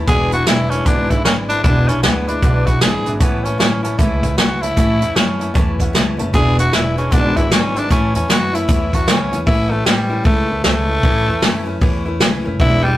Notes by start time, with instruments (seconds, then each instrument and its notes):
0.06 upright bass E1, steel-string acoustic guitar E2 B2 E3 G#3 D4 E4, tenor saxophone G#4, honky-tonk piano B4 E5 G#5, kick, closed hi-hat
0.31 steel-string acoustic guitar G#3 D4 E4, tenor saxophone F#4, honky-tonk piano B4 E5 B5, closed hi-hat
0.35 steel-string acoustic guitar E3
0.46 upright bass E1, steel-string acoustic guitar E3 G#3 D4 E4, tenor saxophone E4, honky-tonk piano B4 G#5, snare, closed hi-hat
0.70 steel-string acoustic guitar G#3 D4 E4, tenor saxophone C#4, honky-tonk piano B4 E5 G#5, closed hi-hat
0.74 steel-string acoustic guitar E3
0.85 upright bass G#1, steel-string acoustic guitar E2 B2 E3 G#3 D4 E4, tenor saxophone D4, honky-tonk piano B4 E5 G#5, kick, closed hi-hat
1.10 steel-string acoustic guitar E3 G#3 D4 E4, tenor saxophone E4, honky-tonk piano B4 E5 G#5, kick, closed hi-hat
1.25 upright bass G#1, steel-string acoustic guitar E3 G#3 D4 E4, tenor saxophone C#4, honky-tonk piano B4 G#5, snare, closed hi-hat
1.49 steel-string acoustic guitar E3 G#3 D4 E4, tenor saxophone D4, honky-tonk piano B4 E5 B5, closed hi-hat
1.63 upright bass E1, steel-string acoustic guitar E2 B2 E3 G#3 D4 E4, tenor saxophone D4, honky-tonk piano B4 E5 G#5, kick, closed hi-hat
1.88 upright bass B1, steel-string acoustic guitar E3 G#3 D4 E4, tenor saxophone C#4, honky-tonk piano B4 E5 G#5, closed hi-hat
2.03 upright bass D2, steel-string acoustic guitar E3 G#3 D4 E4, tenor saxophone B3, honky-tonk piano B4 E5 G#5, snare, closed hi-hat
2.27 steel-string acoustic guitar E3 G#3 D4 E4, tenor saxophone D4, honky-tonk piano B4 E5 B5, closed hi-hat
2.42 upright bass B1, steel-string acoustic guitar E2 B2 E3 G#3 D4 E4, honky-tonk piano B4 E5 F#5, kick, closed hi-hat
2.66 steel-string acoustic guitar E3 G#3 D4 E4, tenor saxophone F#4, honky-tonk piano B4 E5 G#5, kick, closed hi-hat
2.81 upright bass G#1, steel-string acoustic guitar E3 G#3 D4 E4, tenor saxophone G#4, honky-tonk piano B4 G#5, snare, closed hi-hat
3.05 upright bass G#1, steel-string acoustic guitar E3 G#3 D4 E4, honky-tonk piano B4 E5 G#5, closed hi-hat
3.20 upright bass A1, steel-string acoustic guitar A2 E3 A3 C#4 E4, tenor saxophone B3, honky-tonk piano C#5 E5 A5, kick, closed hi-hat
3.44 steel-string acoustic guitar A3 C#4 E4, tenor saxophone C#4, honky-tonk piano C#5 E5 A5, closed hi-hat
3.58 upright bass A1, steel-string acoustic guitar E3 A3 C#4 E4, tenor saxophone C#4, honky-tonk piano C#5 E5 A5, snare, closed hi-hat
3.83 steel-string acoustic guitar A3 C#4 E4, tenor saxophone C#4, honky-tonk piano C#5 E5 A5, closed hi-hat
3.98 upright bass C#2, steel-string acoustic guitar A2 E3 A3 C#4 E4, tenor saxophone E4, honky-tonk piano C#5 E5 A5, kick, closed hi-hat
4.23 steel-string acoustic guitar A3 C#4 E4, honky-tonk piano C#5 E5 G#5, kick, closed hi-hat
4.37 upright bass C#2, steel-string acoustic guitar E3 A3 C#4 E4, tenor saxophone F#4, honky-tonk piano C#5 E5 A5, snare, closed hi-hat
4.62 steel-string acoustic guitar A3 C#4 E4, tenor saxophone E4, honky-tonk piano C#5 E5 A5, closed hi-hat
4.76 upright bass A1, steel-string acoustic guitar A2 E3 A3 C#4 E4, honky-tonk piano C#5 E5 A5, kick, closed hi-hat
5.00 upright bass E2, steel-string acoustic guitar A3 C#4 E4, honky-tonk piano C#5 E5 A5, closed hi-hat
5.15 upright bass F#2, steel-string acoustic guitar E3 A3 C#4 E4, tenor saxophone C#4, honky-tonk piano C#5 E5 A5, snare, closed hi-hat
5.39 steel-string acoustic guitar A3 C#4 E4, honky-tonk piano C#5 E5 A5, closed hi-hat
5.54 upright bass E2, steel-string acoustic guitar A2 E3 A3 C#4 E4, honky-tonk piano C#5 E5 A5, kick, closed hi-hat
5.79 steel-string acoustic guitar A3 C#4 E4, honky-tonk piano C#5 E5 F#5, kick, closed hi-hat
5.93 upright bass C#2, steel-string acoustic guitar E3 A3 C#4 E4, honky-tonk piano C#5 E5 A5, snare, closed hi-hat
6.17 upright bass F#1, steel-string acoustic guitar A3 C#4 E4, honky-tonk piano C#5 E5 A5, closed hi-hat
6.33 upright bass E1, steel-string acoustic guitar E2 B2 E3 G#3 D4 E4, tenor saxophone G#4, honky-tonk piano B4 E5 G#5, kick, closed hi-hat
6.57 steel-string acoustic guitar E3 G#3 D4 E4, tenor saxophone F#4, honky-tonk piano B4 E5 F#5, closed hi-hat
6.72 upright bass E1, steel-string acoustic guitar E3 G#3 D4 E4, tenor saxophone E4, honky-tonk piano B4 G#5, snare, closed hi-hat
6.96 steel-string acoustic guitar E3 G#3 D4 E4, tenor saxophone C#4, honky-tonk piano B4 E5 G#5, closed hi-hat
7.11 upright bass G#1, steel-string acoustic guitar E2 B2 E3 G#3 D4 E4, tenor saxophone D4, honky-tonk piano B4 E5 F#5, kick, closed hi-hat
7.35 steel-string acoustic guitar E3 G#3 D4 E4, tenor saxophone E4, honky-tonk piano B4 E5 G#5, kick, closed hi-hat
7.50 upright bass G#1, steel-string acoustic guitar E3 G#3 D4 E4, tenor saxophone C#4, honky-tonk piano B4 G#5, snare, closed hi-hat
7.75 steel-string acoustic guitar E3 G#3 D4 E4, tenor saxophone D4, honky-tonk piano B4 E5 G#5, closed hi-hat
7.89 upright bass A1, steel-string acoustic guitar A2 E3 A3 C#4 E4, tenor saxophone C#4, honky-tonk piano C#5 E5 A5, kick, closed hi-hat
8.14 upright bass E2, steel-string acoustic guitar A3 C#4 E4, tenor saxophone C#4, honky-tonk piano C#5 E5 A5, closed hi-hat
8.28 upright bass F#2, steel-string acoustic guitar E3 A3 C#4 E4, tenor saxophone F#4, honky-tonk piano C#5 E5 B5, snare, closed hi-hat
8.53 steel-string acoustic guitar A3 C#4 E4, tenor saxophone E4, honky-tonk piano C#5 E5 A5, closed hi-hat
8.68 upright bass E2, steel-string acoustic guitar A2 E3 A3 C#4 E4, honky-tonk piano C#5 E5 B5, kick, closed hi-hat
8.92 steel-string acoustic guitar A3 C#4 E4, tenor saxophone F#4, honky-tonk piano C#5 E5 A5, kick, closed hi-hat
9.07 upright bass C#2, steel-string acoustic guitar E3 A3 C#4 E4, tenor saxophone C#4, honky-tonk piano C#5 E5 F#5, snare, closed hi-hat
9.32 upright bass E2, steel-string acoustic guitar A3 C#4 E4, honky-tonk piano C#5 E5 G#5, closed hi-hat
9.46 upright bass A1, steel-string acoustic guitar A2 E3 A3 C#4 E4, tenor saxophone E4, kick, open hi-hat
9.70 tenor saxophone A3, steel-string acoustic guitar A3 C#4 E4
9.85 upright bass A1, steel-string acoustic guitar E3 A3 C#4 E4, tenor saxophone G3, snare, open hi-hat
10.09 steel-string acoustic guitar A3 C#4 E4
10.24 upright bass C#2, steel-string acoustic guitar A2 E3 A3 C#4 E4, tenor saxophone A3, kick, open hi-hat
10.49 steel-string acoustic guitar A3 C#4 E4
10.64 upright bass C#2, steel-string acoustic guitar E3 A3 C#4 E4, tenor saxophone A3, snare, open hi-hat
10.89 steel-string acoustic guitar A3 C#4 E4
11.03 upright bass A1, steel-string acoustic guitar A2 E3 A3 C#4 E4, kick, open hi-hat
11.27 upright bass E2, steel-string acoustic guitar A3 C#4 E4
11.41 upright bass F#2, steel-string acoustic guitar E3 A3 C#4 E4, snare, open hi-hat
11.66 steel-string acoustic guitar A3 C#4 E4
11.81 upright bass E2, steel-string acoustic guitar A2 E3 A3 C#4 E4, kick, open hi-hat
12.05 steel-string acoustic guitar A3 C#4 E4
12.20 upright bass C#2, steel-string acoustic guitar E3 A3 C#4 E4, snare, open hi-hat
12.44 upright bass F#1, steel-string acoustic guitar A3 C#4 E4
12.59 upright bass E1, steel-string acoustic guitar E2 B2 E3 G#3 D4 E4, tenor saxophone E4, kick, open hi-hat
12.84 steel-string acoustic guitar E3 G#3 D4 E4, tenor saxophone G3